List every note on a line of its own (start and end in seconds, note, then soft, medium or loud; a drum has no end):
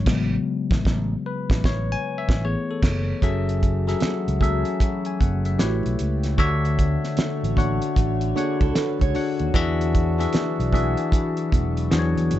0.06 0.35 A1 loud
0.06 1.21 C#3 medium
0.06 1.21 F#3 medium
0.06 1.21 G#3 medium
0.06 1.22 B3 medium
0.06 kick loud
0.06 snare loud
0.06 crash medium
0.71 0.83 A1 loud
0.71 kick loud
0.71 snare loud
0.85 1.14 A1 loud
0.85 kick loud
0.85 snare loud
1.26 1.66 B4 medium
1.50 1.63 A1 loud
1.50 kick loud
1.50 snare loud
1.64 1.93 A1 loud
1.64 1.92 C#5 loud
1.64 kick loud
1.64 snare loud
1.92 2.18 G#5 loud
2.18 2.45 E5 medium
2.29 2.54 A1 loud
2.29 kick loud
2.29 snare loud
2.44 3.19 E3 medium
2.44 3.19 A3 soft
2.44 3.19 B3 medium
2.44 3.19 G#4 medium
2.44 2.71 C#5 medium
2.71 3.19 A4 medium
2.82 3.12 F#1 loud
2.82 kick loud
2.82 snare loud
2.82 crash medium
3.22 3.93 F#1 loud
3.22 5.57 E3 medium
3.22 5.56 F#3 medium
3.22 3.75 F#3 medium
3.22 9.50 A3 medium
3.22 3.75 C#4 medium
3.22 5.57 F#4 medium
3.22 3.75 G#4 medium
3.22 3.75 A4 medium
3.22 3.75 E5 loud
3.22 kick loud
3.22 closed hi-hat medium
3.22 low conga medium
3.49 closed hi-hat soft
3.61 kick medium
3.61 closed hi-hat medium
3.61 muted conga soft
3.87 4.34 F#3 medium
3.87 4.34 C#4 medium
3.87 4.34 G#4 medium
3.87 4.34 A4 medium
3.87 4.35 E5 medium
3.87 snare soft
3.87 closed hi-hat soft
4.00 muted fingered electric bass stroke soft
4.00 snare loud
4.00 closed hi-hat medium
4.00 muted conga soft
4.00 high conga medium
4.28 4.62 C#2 medium
4.28 closed hi-hat soft
4.41 5.59 F#3 medium
4.41 5.59 C#4 medium
4.41 5.59 G#4 medium
4.41 5.60 A4 medium
4.41 4.80 E5 medium
4.41 kick medium
4.41 closed hi-hat medium
4.41 high conga medium
4.65 closed hi-hat soft
4.80 5.04 E5 medium
4.80 kick medium
4.80 closed hi-hat medium
4.80 muted conga soft
5.05 5.19 G#5 medium
5.05 closed hi-hat soft
5.20 5.56 F#1 medium
5.20 5.44 F#5 medium
5.20 kick medium
5.20 closed hi-hat medium
5.20 muted conga soft
5.20 high conga medium
5.45 5.83 E5 medium
5.45 closed hi-hat soft
5.58 5.83 A1 medium
5.58 6.37 C#3 medium
5.58 6.28 A3 medium
5.58 6.37 B3 medium
5.58 6.29 E4 medium
5.58 6.29 G4 medium
5.58 6.37 G4 medium
5.58 6.29 B4 medium
5.58 6.29 C#5 medium
5.58 snare medium
5.58 closed hi-hat medium
5.58 muted conga soft
5.83 5.98 B1 medium
5.83 closed hi-hat soft
5.83 low conga medium
5.99 6.35 C#2 medium
5.99 closed hi-hat medium
5.99 muted conga soft
6.23 snare soft
6.23 closed hi-hat soft
6.38 6.96 D2 medium
6.38 7.42 D3 loud
6.38 9.51 D3 medium
6.38 7.42 D4 loud
6.38 12.39 F#4 medium
6.38 7.43 F#4 loud
6.38 9.51 C#5 medium
6.38 7.43 C#5 loud
6.38 7.43 E5 loud
6.38 kick loud
6.38 closed hi-hat medium
6.38 muted conga soft
6.38 low conga medium
6.65 closed hi-hat soft
6.79 kick medium
6.79 closed hi-hat medium
7.04 snare soft
7.04 closed hi-hat soft
7.17 muted fingered electric bass stroke soft
7.17 snare loud
7.17 closed hi-hat medium
7.17 high conga medium
7.43 7.78 A1 medium
7.43 closed hi-hat soft
7.56 8.26 D3 medium
7.56 8.26 D4 medium
7.56 8.26 F#4 medium
7.56 8.27 C#5 medium
7.56 8.27 F#5 medium
7.56 kick medium
7.56 closed hi-hat medium
7.56 muted conga soft
7.56 high conga medium
7.82 closed hi-hat soft
7.96 8.32 A1 medium
7.96 kick medium
7.96 closed hi-hat medium
7.96 muted conga soft
8.21 closed hi-hat soft
8.36 9.05 D3 medium
8.36 9.05 D4 medium
8.36 8.60 D4 medium
8.36 9.05 F#4 medium
8.36 8.60 G#4 medium
8.36 9.06 C#5 medium
8.36 9.06 F#5 medium
8.36 closed hi-hat medium
8.36 high conga medium
8.61 8.74 C#2 medium
8.61 8.75 E4 medium
8.61 8.75 A4 medium
8.61 kick medium
8.61 closed hi-hat soft
8.75 9.00 F#4 medium
8.75 8.99 B4 medium
8.75 snare loud
8.75 closed hi-hat medium
8.75 muted conga soft
8.99 9.14 C#2 medium
8.99 9.52 G#4 medium
8.99 9.52 C#5 medium
8.99 kick medium
8.99 closed hi-hat soft
8.99 low conga medium
9.14 9.49 D3 medium
9.14 9.49 D4 medium
9.14 9.49 F#4 medium
9.14 9.50 C#5 medium
9.14 9.50 F#5 medium
9.14 open hi-hat soft
9.14 muted conga soft
9.39 9.53 D#2 medium
9.39 closed hi-hat soft
9.54 10.25 E2 loud
9.54 10.06 E3 loud
9.54 11.88 E3 medium
9.54 12.39 F#3 medium
9.54 11.89 D4 medium
9.54 10.06 D4 loud
9.54 10.07 F#4 loud
9.54 10.07 G#4 loud
9.54 10.07 E5 loud
9.54 kick medium
9.54 closed hi-hat medium
9.54 muted conga soft
9.54 low conga medium
9.81 closed hi-hat soft
9.93 kick medium
9.93 closed hi-hat medium
9.93 muted conga soft
10.19 10.65 E3 medium
10.19 10.65 D4 medium
10.19 10.66 F#4 medium
10.19 10.66 G#4 medium
10.19 10.66 E5 medium
10.19 snare soft
10.19 closed hi-hat soft
10.33 muted fingered electric bass stroke soft
10.33 snare loud
10.33 closed hi-hat medium
10.33 high conga medium
10.60 10.94 B1 medium
10.60 closed hi-hat soft
10.72 11.90 E3 medium
10.72 11.90 D4 medium
10.72 11.90 F#4 medium
10.72 11.91 G#4 medium
10.72 11.92 E5 medium
10.72 kick medium
10.72 closed hi-hat medium
10.72 muted conga soft
10.72 high conga medium
10.97 closed hi-hat soft
11.12 kick medium
11.12 closed hi-hat medium
11.12 muted conga soft
11.37 closed hi-hat soft
11.52 11.88 E1 medium
11.52 kick medium
11.52 closed hi-hat medium
11.52 high conga medium
11.77 closed hi-hat soft
11.90 12.14 E2 medium
11.90 12.39 D3 medium
11.90 12.39 E3 medium
11.90 12.39 D4 medium
11.90 12.39 F#4 medium
11.90 12.39 G#4 medium
11.90 12.00 C5 medium
11.90 12.39 C#5 medium
11.90 snare medium
11.90 closed hi-hat medium
11.99 12.39 C#5 medium
12.15 12.33 E2 medium
12.15 closed hi-hat soft
12.15 low conga medium
12.31 12.39 G#1 medium
12.31 closed hi-hat medium
12.31 muted conga soft